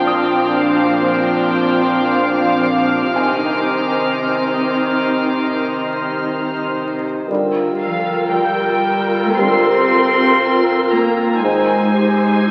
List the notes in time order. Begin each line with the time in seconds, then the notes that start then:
Already playing: A#1 A#2 F3 C4 D4 C5 F5 G5 D6 F6
0.07 D#6
0.57 F5
1.09 G5
2.11 F5
3.14 C2 C3 D#3 C4 D#4 C5 D#5 G#5
7.27 G1 D3 G3 F4 A#4 F5 G5 A#5 E6
7.80 F3 F5
8.29 G3 G5
9.34 D3 G3 C4 F4 G4 A#4 C6
10.40 F4
10.90 A#3 A#5
11.41 G#1 D#3 G#3 D#4 C5 G#5
11.95 G4
12.46 F4